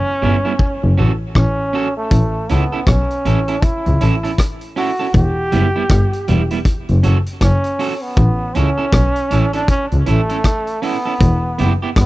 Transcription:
0.00 1.08 C#4 loud
0.22 0.32 G1 medium
0.22 0.35 G3 medium
0.22 0.36 B3 medium
0.22 0.36 E4 loud
0.45 0.52 G3 medium
0.45 0.52 B3 medium
0.45 0.52 E4 medium
0.59 kick loud
0.84 0.92 F#1 loud
0.98 1.07 A1 medium
0.98 1.11 C#4 medium
0.98 1.11 F#4 loud
0.98 1.12 A4 loud
1.35 1.44 A1 medium
1.35 1.93 C#4 loud
1.35 kick loud
1.35 cross-stick loud
1.73 1.86 C#4 medium
1.73 1.87 F#4 medium
1.73 1.87 A4 loud
1.97 2.52 A3 medium
2.11 2.20 A1 loud
2.11 kick loud
2.11 closed hi-hat medium
2.49 2.59 C#2 medium
2.49 2.90 B3 medium
2.49 2.63 C#4 medium
2.49 2.63 E4 medium
2.49 2.63 A4 medium
2.49 closed hi-hat medium
2.72 2.80 C#4 medium
2.72 2.79 E4 medium
2.72 2.79 A4 medium
2.87 2.96 B1 medium
2.87 3.65 C#4 medium
2.87 kick loud
2.87 cross-stick loud
2.87 closed hi-hat loud
3.11 closed hi-hat medium
3.25 3.35 A1 medium
3.25 3.38 C#4 medium
3.25 3.39 E4 medium
3.25 3.39 A4 medium
3.25 closed hi-hat medium
3.48 3.55 C#4 medium
3.48 3.55 E4 medium
3.48 3.55 A4 medium
3.48 closed hi-hat medium
3.62 4.39 E4 medium
3.62 kick loud
3.62 closed hi-hat medium
3.86 3.95 C#2 medium
3.86 closed hi-hat soft
4.01 4.10 A1 medium
4.01 4.14 C#4 medium
4.01 4.14 E4 medium
4.01 4.15 A4 medium
4.01 closed hi-hat medium
4.23 4.31 C#4 soft
4.23 4.31 E4 medium
4.23 4.30 A4 medium
4.23 closed hi-hat medium
4.38 kick medium
4.38 cross-stick loud
4.38 closed hi-hat medium
4.61 closed hi-hat soft
4.76 4.89 C#4 medium
4.76 4.90 E4 loud
4.76 5.12 F#4 loud
4.76 4.90 A4 medium
4.76 open hi-hat medium
4.99 5.07 C#4 soft
4.99 5.06 E4 medium
4.99 5.06 A4 medium
5.14 5.23 E1 loud
5.14 6.62 G4 loud
5.14 kick loud
5.14 closed hi-hat medium
5.52 5.62 F#1 medium
5.52 5.65 G3 medium
5.52 5.66 B3 medium
5.52 5.66 E4 loud
5.52 closed hi-hat medium
5.76 5.83 G3 medium
5.76 5.82 B3 medium
5.76 5.82 E4 medium
5.90 5.99 G1 loud
5.90 kick loud
5.90 cross-stick loud
5.90 closed hi-hat loud
6.13 closed hi-hat medium
6.28 6.38 E1 loud
6.28 6.41 G3 medium
6.28 6.41 B3 medium
6.28 6.42 E4 medium
6.28 closed hi-hat medium
6.50 6.58 G3 medium
6.50 6.58 B3 medium
6.50 6.58 E4 medium
6.50 closed hi-hat medium
6.65 kick loud
6.65 closed hi-hat medium
6.89 6.98 F#1 loud
6.89 closed hi-hat soft
7.03 7.13 F#1 medium
7.03 7.17 C#4 medium
7.03 7.17 F#4 medium
7.03 7.17 A4 medium
7.03 closed hi-hat medium
7.26 closed hi-hat medium
7.41 7.50 F#1 loud
7.41 7.95 C#4 loud
7.41 kick loud
7.41 cross-stick loud
7.41 closed hi-hat medium
7.64 closed hi-hat soft
7.79 7.92 C#4 medium
7.79 7.93 F#4 medium
7.79 7.93 A4 medium
7.79 open hi-hat medium
7.95 8.04 C#4 medium
8.03 8.57 B3 loud
8.17 8.26 A1 loud
8.17 kick loud
8.17 closed hi-hat medium
8.55 8.65 C#2 medium
8.55 8.68 C#4 medium
8.55 9.54 C#4 loud
8.55 8.69 E4 loud
8.55 8.69 A4 loud
8.55 closed hi-hat medium
8.78 8.85 C#4 medium
8.78 8.85 E4 medium
8.78 8.85 A4 medium
8.92 9.01 B1 loud
8.92 kick loud
8.92 cross-stick loud
8.92 closed hi-hat loud
9.16 closed hi-hat medium
9.31 9.41 A1 medium
9.31 9.44 C#4 medium
9.31 9.45 E4 medium
9.31 9.45 A4 loud
9.31 closed hi-hat medium
9.53 9.61 C#4 medium
9.53 9.68 D4 loud
9.53 9.61 E4 medium
9.53 9.60 A4 medium
9.53 closed hi-hat medium
9.68 9.86 C#4 loud
9.68 kick loud
9.68 closed hi-hat medium
9.92 10.01 C#2 medium
9.92 closed hi-hat medium
10.06 10.16 A1 medium
10.06 10.85 A3 loud
10.06 10.20 C#4 medium
10.06 10.20 E4 loud
10.06 10.20 A4 loud
10.06 closed hi-hat medium
10.29 10.37 C#4 medium
10.29 10.37 E4 medium
10.29 10.36 A4 medium
10.29 closed hi-hat medium
10.44 kick loud
10.44 cross-stick loud
10.44 closed hi-hat loud
10.67 closed hi-hat medium
10.82 11.72 B3 loud
10.82 10.95 C#4 medium
10.82 10.96 E4 medium
10.82 10.96 A4 medium
10.82 open hi-hat medium
11.05 11.13 C#4 medium
11.05 11.13 E4 medium
11.05 11.12 A4 medium
11.20 11.29 E1 loud
11.20 kick loud
11.20 closed hi-hat medium
11.58 11.69 F#1 medium
11.58 11.72 B3 medium
11.58 11.72 E4 medium
11.58 11.72 G4 loud
11.58 closed hi-hat medium
11.82 11.89 B3 medium
11.82 11.89 E4 medium
11.82 11.89 G4 medium
11.96 12.05 G1 loud
11.96 12.06 B3 medium
11.96 kick loud
11.96 cross-stick loud
11.96 closed hi-hat loud

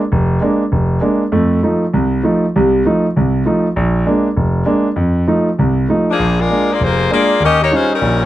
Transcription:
0.12 0.38 F1 medium
0.41 0.62 G#3 medium
0.41 0.62 A#3 soft
0.41 0.62 D4 medium
0.72 0.98 F1 medium
1.01 1.22 G#3 medium
1.01 1.22 A#3 soft
1.01 1.22 D4 medium
1.32 1.59 F2 medium
1.32 1.59 A3 medium
1.63 1.83 F3 medium
1.63 1.83 A3 soft
1.63 1.84 D#4 medium
1.94 2.20 C2 medium
1.94 2.20 C3 medium
2.23 2.44 F3 medium
2.23 2.44 A3 soft
2.23 2.45 D#4 medium
2.56 2.81 C2 medium
2.56 2.81 C3 medium
2.85 3.05 F3 medium
2.85 3.05 A3 medium
2.85 3.06 D#4 medium
3.16 3.42 C2 medium
3.16 3.42 C3 medium
3.46 3.66 F3 medium
3.46 3.66 A3 soft
3.46 3.66 D#4 medium
3.76 4.02 A#1 medium
4.06 4.26 G#3 medium
4.06 4.27 A#3 soft
4.06 4.27 D4 medium
4.36 4.63 F1 medium
4.65 4.86 G#3 medium
4.65 4.87 A#3 soft
4.65 4.87 D4 medium
4.96 5.23 F2 medium
5.27 5.48 F3 medium
5.27 5.48 A3 soft
5.27 5.48 D#4 medium
5.59 5.85 C2 medium
5.59 5.84 C3 medium
5.89 6.09 F3 soft
5.89 6.09 A3 soft
5.89 6.09 D#4 medium
6.10 6.37 F3 medium
6.10 6.38 A#3 medium
6.10 6.37 D4 medium
6.10 6.38 G#4 medium
6.19 6.45 A#1 medium
6.39 6.69 G#3 medium
6.39 6.69 D4 medium
6.39 6.70 F4 medium
6.39 6.69 A#4 medium
6.49 6.70 G#3 soft
6.49 6.70 A#3 soft
6.49 6.70 D4 medium
6.72 6.81 A#3 medium
6.72 6.81 F4 medium
6.72 6.81 G#4 medium
6.72 6.82 D5 medium
6.80 7.06 F1 medium
6.80 7.12 A#3 medium
6.80 7.11 F4 medium
6.80 7.11 G#4 medium
6.80 7.12 C5 medium
7.10 7.31 G#3 soft
7.10 7.31 A#3 soft
7.10 7.40 A#3 medium
7.10 7.31 D4 medium
7.10 7.40 F4 medium
7.10 7.40 G#4 medium
7.10 7.40 D5 loud
7.40 7.67 D#2 medium
7.40 7.60 C#4 loud
7.44 7.60 G4 loud
7.44 7.60 A#4 loud
7.44 7.60 D#5 loud
7.62 7.72 A#3 medium
7.62 7.72 D#4 medium
7.62 7.72 G4 medium
7.62 7.71 C#5 medium
7.71 7.91 G3 soft
7.71 7.92 G#3 medium
7.71 7.91 C#4 soft
7.71 7.91 C#4 medium
7.71 7.92 D#4 medium
7.71 7.92 F4 medium
7.71 7.92 C5 loud
7.93 8.20 G3 medium
7.93 8.20 C#4 medium
7.93 8.20 D#4 medium
7.93 8.20 A#4 medium
8.01 8.25 A#1 medium
8.01 8.25 A#2 medium

